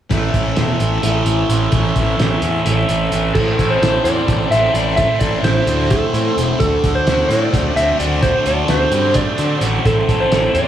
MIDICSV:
0, 0, Header, 1, 6, 480
1, 0, Start_track
1, 0, Tempo, 464037
1, 108, Time_signature, 7, 3, 24, 8
1, 11046, End_track
2, 0, Start_track
2, 0, Title_t, "Electric slide guitar"
2, 0, Program_c, 0, 29
2, 3462, Note_on_c, 0, 69, 85
2, 3831, Note_on_c, 0, 72, 72
2, 3837, Note_off_c, 0, 69, 0
2, 4178, Note_off_c, 0, 72, 0
2, 4182, Note_on_c, 0, 74, 85
2, 4662, Note_off_c, 0, 74, 0
2, 4666, Note_on_c, 0, 76, 82
2, 4903, Note_on_c, 0, 74, 87
2, 4916, Note_off_c, 0, 76, 0
2, 5132, Note_on_c, 0, 76, 88
2, 5155, Note_off_c, 0, 74, 0
2, 5364, Note_off_c, 0, 76, 0
2, 5371, Note_on_c, 0, 74, 80
2, 5604, Note_off_c, 0, 74, 0
2, 5627, Note_on_c, 0, 72, 77
2, 6075, Note_off_c, 0, 72, 0
2, 6113, Note_on_c, 0, 69, 73
2, 6615, Note_off_c, 0, 69, 0
2, 6823, Note_on_c, 0, 69, 86
2, 7162, Note_off_c, 0, 69, 0
2, 7191, Note_on_c, 0, 72, 79
2, 7526, Note_off_c, 0, 72, 0
2, 7528, Note_on_c, 0, 74, 80
2, 8026, Note_off_c, 0, 74, 0
2, 8030, Note_on_c, 0, 76, 82
2, 8268, Note_off_c, 0, 76, 0
2, 8272, Note_on_c, 0, 74, 75
2, 8495, Note_off_c, 0, 74, 0
2, 8509, Note_on_c, 0, 72, 84
2, 8733, Note_off_c, 0, 72, 0
2, 8763, Note_on_c, 0, 74, 80
2, 8998, Note_on_c, 0, 72, 76
2, 9004, Note_off_c, 0, 74, 0
2, 9470, Note_on_c, 0, 74, 74
2, 9489, Note_off_c, 0, 72, 0
2, 9972, Note_off_c, 0, 74, 0
2, 10198, Note_on_c, 0, 69, 81
2, 10553, Note_on_c, 0, 72, 69
2, 10564, Note_off_c, 0, 69, 0
2, 10902, Note_off_c, 0, 72, 0
2, 10906, Note_on_c, 0, 74, 75
2, 11046, Note_off_c, 0, 74, 0
2, 11046, End_track
3, 0, Start_track
3, 0, Title_t, "Distorted electric guitar"
3, 0, Program_c, 1, 30
3, 102, Note_on_c, 1, 45, 60
3, 115, Note_on_c, 1, 52, 64
3, 125, Note_on_c, 1, 57, 73
3, 1057, Note_off_c, 1, 45, 0
3, 1061, Note_on_c, 1, 45, 58
3, 1069, Note_off_c, 1, 52, 0
3, 1073, Note_on_c, 1, 52, 69
3, 1085, Note_off_c, 1, 57, 0
3, 1089, Note_on_c, 1, 57, 65
3, 1774, Note_off_c, 1, 45, 0
3, 1778, Note_on_c, 1, 45, 75
3, 1790, Note_off_c, 1, 52, 0
3, 1794, Note_on_c, 1, 52, 76
3, 1800, Note_off_c, 1, 57, 0
3, 1805, Note_on_c, 1, 57, 79
3, 2729, Note_off_c, 1, 57, 0
3, 2730, Note_off_c, 1, 45, 0
3, 2738, Note_off_c, 1, 52, 0
3, 2742, Note_on_c, 1, 57, 76
3, 2760, Note_on_c, 1, 52, 63
3, 2772, Note_on_c, 1, 45, 58
3, 3452, Note_off_c, 1, 57, 0
3, 3461, Note_off_c, 1, 52, 0
3, 3467, Note_off_c, 1, 45, 0
3, 3483, Note_on_c, 1, 45, 57
3, 3723, Note_on_c, 1, 69, 58
3, 3951, Note_on_c, 1, 64, 55
3, 4198, Note_on_c, 1, 60, 59
3, 4437, Note_on_c, 1, 57, 62
3, 4665, Note_off_c, 1, 60, 0
3, 4669, Note_on_c, 1, 60, 53
3, 4677, Note_off_c, 1, 45, 0
3, 4903, Note_off_c, 1, 64, 0
3, 4915, Note_on_c, 1, 64, 53
3, 5148, Note_on_c, 1, 45, 56
3, 5388, Note_off_c, 1, 69, 0
3, 5392, Note_on_c, 1, 69, 61
3, 5625, Note_off_c, 1, 64, 0
3, 5637, Note_on_c, 1, 64, 57
3, 5873, Note_off_c, 1, 60, 0
3, 5877, Note_on_c, 1, 60, 58
3, 6111, Note_off_c, 1, 57, 0
3, 6116, Note_on_c, 1, 57, 61
3, 6350, Note_off_c, 1, 45, 0
3, 6353, Note_off_c, 1, 60, 0
3, 6357, Note_on_c, 1, 60, 58
3, 6581, Note_off_c, 1, 64, 0
3, 6593, Note_on_c, 1, 64, 52
3, 6827, Note_on_c, 1, 50, 65
3, 6832, Note_off_c, 1, 64, 0
3, 6858, Note_off_c, 1, 60, 0
3, 7069, Note_off_c, 1, 69, 0
3, 7073, Note_on_c, 1, 69, 66
3, 7311, Note_on_c, 1, 66, 57
3, 7546, Note_on_c, 1, 60, 62
3, 7786, Note_off_c, 1, 57, 0
3, 7790, Note_on_c, 1, 57, 60
3, 8029, Note_off_c, 1, 50, 0
3, 8029, Note_off_c, 1, 60, 0
3, 8033, Note_on_c, 1, 60, 55
3, 8262, Note_off_c, 1, 66, 0
3, 8275, Note_on_c, 1, 66, 55
3, 8507, Note_on_c, 1, 50, 61
3, 8739, Note_off_c, 1, 69, 0
3, 8743, Note_on_c, 1, 69, 60
3, 8977, Note_off_c, 1, 66, 0
3, 8989, Note_on_c, 1, 66, 60
3, 9224, Note_off_c, 1, 60, 0
3, 9228, Note_on_c, 1, 60, 59
3, 9475, Note_off_c, 1, 57, 0
3, 9480, Note_on_c, 1, 57, 59
3, 9708, Note_off_c, 1, 50, 0
3, 9717, Note_off_c, 1, 60, 0
3, 9721, Note_on_c, 1, 60, 55
3, 9943, Note_off_c, 1, 66, 0
3, 9955, Note_on_c, 1, 66, 55
3, 10192, Note_off_c, 1, 66, 0
3, 10202, Note_on_c, 1, 45, 59
3, 10435, Note_off_c, 1, 69, 0
3, 10439, Note_on_c, 1, 69, 59
3, 10682, Note_on_c, 1, 64, 60
3, 10914, Note_off_c, 1, 60, 0
3, 10918, Note_on_c, 1, 60, 60
3, 11046, Note_off_c, 1, 45, 0
3, 11046, Note_off_c, 1, 57, 0
3, 11046, Note_off_c, 1, 60, 0
3, 11046, Note_off_c, 1, 64, 0
3, 11046, Note_off_c, 1, 69, 0
3, 11046, End_track
4, 0, Start_track
4, 0, Title_t, "Transistor combo organ"
4, 0, Program_c, 2, 18
4, 123, Note_on_c, 2, 52, 51
4, 130, Note_on_c, 2, 69, 50
4, 132, Note_on_c, 2, 76, 61
4, 139, Note_on_c, 2, 60, 45
4, 3445, Note_off_c, 2, 52, 0
4, 3449, Note_off_c, 2, 69, 0
4, 3450, Note_off_c, 2, 76, 0
4, 3453, Note_off_c, 2, 60, 0
4, 3491, Note_on_c, 2, 69, 50
4, 3493, Note_on_c, 2, 52, 59
4, 3498, Note_on_c, 2, 72, 62
4, 3499, Note_on_c, 2, 60, 52
4, 6810, Note_off_c, 2, 52, 0
4, 6813, Note_off_c, 2, 60, 0
4, 6844, Note_on_c, 2, 54, 60
4, 6845, Note_on_c, 2, 62, 53
4, 10159, Note_off_c, 2, 69, 0
4, 10162, Note_off_c, 2, 54, 0
4, 10163, Note_off_c, 2, 62, 0
4, 10190, Note_on_c, 2, 52, 53
4, 10191, Note_on_c, 2, 69, 54
4, 10193, Note_on_c, 2, 60, 53
4, 11046, Note_off_c, 2, 52, 0
4, 11046, Note_off_c, 2, 60, 0
4, 11046, Note_off_c, 2, 69, 0
4, 11046, Note_off_c, 2, 72, 0
4, 11046, End_track
5, 0, Start_track
5, 0, Title_t, "Picked electric bass"
5, 0, Program_c, 3, 34
5, 113, Note_on_c, 3, 33, 72
5, 287, Note_off_c, 3, 33, 0
5, 350, Note_on_c, 3, 33, 62
5, 525, Note_off_c, 3, 33, 0
5, 588, Note_on_c, 3, 28, 62
5, 764, Note_off_c, 3, 28, 0
5, 831, Note_on_c, 3, 33, 72
5, 1006, Note_off_c, 3, 33, 0
5, 1069, Note_on_c, 3, 33, 70
5, 1246, Note_off_c, 3, 33, 0
5, 1292, Note_on_c, 3, 33, 63
5, 1475, Note_off_c, 3, 33, 0
5, 1541, Note_on_c, 3, 33, 72
5, 1720, Note_off_c, 3, 33, 0
5, 1789, Note_on_c, 3, 33, 70
5, 1966, Note_off_c, 3, 33, 0
5, 2030, Note_on_c, 3, 33, 69
5, 2206, Note_off_c, 3, 33, 0
5, 2258, Note_on_c, 3, 33, 68
5, 2439, Note_off_c, 3, 33, 0
5, 2501, Note_on_c, 3, 40, 72
5, 2681, Note_off_c, 3, 40, 0
5, 2742, Note_on_c, 3, 33, 70
5, 2922, Note_off_c, 3, 33, 0
5, 2991, Note_on_c, 3, 33, 69
5, 3167, Note_off_c, 3, 33, 0
5, 3236, Note_on_c, 3, 33, 66
5, 3410, Note_off_c, 3, 33, 0
5, 3469, Note_on_c, 3, 33, 76
5, 3629, Note_off_c, 3, 33, 0
5, 3707, Note_on_c, 3, 33, 60
5, 3868, Note_off_c, 3, 33, 0
5, 3950, Note_on_c, 3, 33, 69
5, 4110, Note_off_c, 3, 33, 0
5, 4181, Note_on_c, 3, 40, 69
5, 4344, Note_off_c, 3, 40, 0
5, 4429, Note_on_c, 3, 33, 66
5, 4589, Note_off_c, 3, 33, 0
5, 4663, Note_on_c, 3, 33, 65
5, 4825, Note_off_c, 3, 33, 0
5, 4903, Note_on_c, 3, 33, 67
5, 5225, Note_off_c, 3, 33, 0
5, 5384, Note_on_c, 3, 33, 67
5, 5546, Note_off_c, 3, 33, 0
5, 5613, Note_on_c, 3, 33, 66
5, 5779, Note_off_c, 3, 33, 0
5, 5860, Note_on_c, 3, 38, 67
5, 6183, Note_off_c, 3, 38, 0
5, 6344, Note_on_c, 3, 45, 69
5, 6506, Note_off_c, 3, 45, 0
5, 6587, Note_on_c, 3, 28, 69
5, 6748, Note_off_c, 3, 28, 0
5, 6830, Note_on_c, 3, 38, 84
5, 6990, Note_off_c, 3, 38, 0
5, 7071, Note_on_c, 3, 38, 73
5, 7231, Note_off_c, 3, 38, 0
5, 7310, Note_on_c, 3, 38, 74
5, 7470, Note_off_c, 3, 38, 0
5, 7541, Note_on_c, 3, 45, 69
5, 7704, Note_off_c, 3, 45, 0
5, 7795, Note_on_c, 3, 38, 73
5, 7953, Note_off_c, 3, 38, 0
5, 8022, Note_on_c, 3, 38, 69
5, 8185, Note_off_c, 3, 38, 0
5, 8271, Note_on_c, 3, 38, 70
5, 8590, Note_off_c, 3, 38, 0
5, 8748, Note_on_c, 3, 38, 65
5, 8908, Note_off_c, 3, 38, 0
5, 8989, Note_on_c, 3, 38, 74
5, 9149, Note_off_c, 3, 38, 0
5, 9216, Note_on_c, 3, 43, 67
5, 9540, Note_off_c, 3, 43, 0
5, 9710, Note_on_c, 3, 50, 66
5, 9869, Note_off_c, 3, 50, 0
5, 9941, Note_on_c, 3, 33, 64
5, 10103, Note_off_c, 3, 33, 0
5, 10190, Note_on_c, 3, 33, 80
5, 10350, Note_off_c, 3, 33, 0
5, 10431, Note_on_c, 3, 33, 71
5, 10590, Note_off_c, 3, 33, 0
5, 10675, Note_on_c, 3, 33, 72
5, 10832, Note_off_c, 3, 33, 0
5, 10906, Note_on_c, 3, 40, 72
5, 11046, Note_off_c, 3, 40, 0
5, 11046, End_track
6, 0, Start_track
6, 0, Title_t, "Drums"
6, 111, Note_on_c, 9, 42, 61
6, 112, Note_on_c, 9, 36, 81
6, 214, Note_off_c, 9, 42, 0
6, 216, Note_off_c, 9, 36, 0
6, 350, Note_on_c, 9, 36, 57
6, 351, Note_on_c, 9, 42, 46
6, 454, Note_off_c, 9, 36, 0
6, 455, Note_off_c, 9, 42, 0
6, 584, Note_on_c, 9, 42, 65
6, 590, Note_on_c, 9, 38, 86
6, 687, Note_off_c, 9, 42, 0
6, 693, Note_off_c, 9, 38, 0
6, 828, Note_on_c, 9, 42, 50
6, 932, Note_off_c, 9, 42, 0
6, 1067, Note_on_c, 9, 42, 67
6, 1171, Note_off_c, 9, 42, 0
6, 1302, Note_on_c, 9, 42, 45
6, 1405, Note_off_c, 9, 42, 0
6, 1549, Note_on_c, 9, 42, 53
6, 1652, Note_off_c, 9, 42, 0
6, 1778, Note_on_c, 9, 42, 65
6, 1786, Note_on_c, 9, 36, 84
6, 1882, Note_off_c, 9, 42, 0
6, 1890, Note_off_c, 9, 36, 0
6, 2026, Note_on_c, 9, 42, 48
6, 2027, Note_on_c, 9, 36, 56
6, 2129, Note_off_c, 9, 42, 0
6, 2130, Note_off_c, 9, 36, 0
6, 2270, Note_on_c, 9, 42, 68
6, 2276, Note_on_c, 9, 38, 91
6, 2373, Note_off_c, 9, 42, 0
6, 2379, Note_off_c, 9, 38, 0
6, 2503, Note_on_c, 9, 42, 48
6, 2606, Note_off_c, 9, 42, 0
6, 2749, Note_on_c, 9, 42, 61
6, 2853, Note_off_c, 9, 42, 0
6, 2987, Note_on_c, 9, 42, 47
6, 3090, Note_off_c, 9, 42, 0
6, 3226, Note_on_c, 9, 42, 47
6, 3329, Note_off_c, 9, 42, 0
6, 3466, Note_on_c, 9, 49, 67
6, 3469, Note_on_c, 9, 36, 86
6, 3569, Note_off_c, 9, 49, 0
6, 3573, Note_off_c, 9, 36, 0
6, 3713, Note_on_c, 9, 36, 65
6, 3714, Note_on_c, 9, 42, 48
6, 3817, Note_off_c, 9, 36, 0
6, 3817, Note_off_c, 9, 42, 0
6, 3958, Note_on_c, 9, 42, 67
6, 3964, Note_on_c, 9, 38, 88
6, 4062, Note_off_c, 9, 42, 0
6, 4068, Note_off_c, 9, 38, 0
6, 4192, Note_on_c, 9, 42, 57
6, 4295, Note_off_c, 9, 42, 0
6, 4430, Note_on_c, 9, 42, 70
6, 4433, Note_on_c, 9, 36, 88
6, 4533, Note_off_c, 9, 42, 0
6, 4536, Note_off_c, 9, 36, 0
6, 4674, Note_on_c, 9, 42, 49
6, 4680, Note_on_c, 9, 38, 25
6, 4777, Note_off_c, 9, 42, 0
6, 4784, Note_off_c, 9, 38, 0
6, 4911, Note_on_c, 9, 42, 50
6, 5015, Note_off_c, 9, 42, 0
6, 5144, Note_on_c, 9, 42, 64
6, 5153, Note_on_c, 9, 36, 82
6, 5248, Note_off_c, 9, 42, 0
6, 5257, Note_off_c, 9, 36, 0
6, 5383, Note_on_c, 9, 42, 52
6, 5391, Note_on_c, 9, 36, 62
6, 5487, Note_off_c, 9, 42, 0
6, 5494, Note_off_c, 9, 36, 0
6, 5629, Note_on_c, 9, 42, 64
6, 5635, Note_on_c, 9, 38, 88
6, 5732, Note_off_c, 9, 42, 0
6, 5738, Note_off_c, 9, 38, 0
6, 5868, Note_on_c, 9, 42, 54
6, 5972, Note_off_c, 9, 42, 0
6, 6108, Note_on_c, 9, 42, 66
6, 6114, Note_on_c, 9, 36, 84
6, 6211, Note_off_c, 9, 42, 0
6, 6217, Note_off_c, 9, 36, 0
6, 6352, Note_on_c, 9, 42, 48
6, 6456, Note_off_c, 9, 42, 0
6, 6598, Note_on_c, 9, 42, 47
6, 6702, Note_off_c, 9, 42, 0
6, 6829, Note_on_c, 9, 42, 63
6, 6833, Note_on_c, 9, 36, 87
6, 6932, Note_off_c, 9, 42, 0
6, 6936, Note_off_c, 9, 36, 0
6, 7072, Note_on_c, 9, 42, 48
6, 7074, Note_on_c, 9, 36, 62
6, 7176, Note_off_c, 9, 42, 0
6, 7177, Note_off_c, 9, 36, 0
6, 7312, Note_on_c, 9, 42, 60
6, 7318, Note_on_c, 9, 38, 88
6, 7416, Note_off_c, 9, 42, 0
6, 7422, Note_off_c, 9, 38, 0
6, 7558, Note_on_c, 9, 42, 54
6, 7662, Note_off_c, 9, 42, 0
6, 7794, Note_on_c, 9, 36, 82
6, 7796, Note_on_c, 9, 42, 66
6, 7898, Note_off_c, 9, 36, 0
6, 7900, Note_off_c, 9, 42, 0
6, 8037, Note_on_c, 9, 42, 46
6, 8141, Note_off_c, 9, 42, 0
6, 8274, Note_on_c, 9, 42, 53
6, 8377, Note_off_c, 9, 42, 0
6, 8509, Note_on_c, 9, 42, 66
6, 8511, Note_on_c, 9, 36, 84
6, 8613, Note_off_c, 9, 42, 0
6, 8614, Note_off_c, 9, 36, 0
6, 8749, Note_on_c, 9, 42, 51
6, 8852, Note_off_c, 9, 42, 0
6, 8981, Note_on_c, 9, 42, 74
6, 8988, Note_on_c, 9, 38, 82
6, 9085, Note_off_c, 9, 42, 0
6, 9091, Note_off_c, 9, 38, 0
6, 9223, Note_on_c, 9, 42, 50
6, 9326, Note_off_c, 9, 42, 0
6, 9456, Note_on_c, 9, 42, 73
6, 9463, Note_on_c, 9, 38, 27
6, 9469, Note_on_c, 9, 36, 91
6, 9560, Note_off_c, 9, 42, 0
6, 9566, Note_off_c, 9, 38, 0
6, 9572, Note_off_c, 9, 36, 0
6, 9702, Note_on_c, 9, 42, 52
6, 9805, Note_off_c, 9, 42, 0
6, 9944, Note_on_c, 9, 42, 53
6, 10047, Note_off_c, 9, 42, 0
6, 10194, Note_on_c, 9, 36, 89
6, 10194, Note_on_c, 9, 42, 66
6, 10298, Note_off_c, 9, 36, 0
6, 10298, Note_off_c, 9, 42, 0
6, 10434, Note_on_c, 9, 36, 60
6, 10435, Note_on_c, 9, 42, 49
6, 10537, Note_off_c, 9, 36, 0
6, 10539, Note_off_c, 9, 42, 0
6, 10672, Note_on_c, 9, 42, 65
6, 10679, Note_on_c, 9, 38, 89
6, 10776, Note_off_c, 9, 42, 0
6, 10782, Note_off_c, 9, 38, 0
6, 10910, Note_on_c, 9, 42, 51
6, 11014, Note_off_c, 9, 42, 0
6, 11046, End_track
0, 0, End_of_file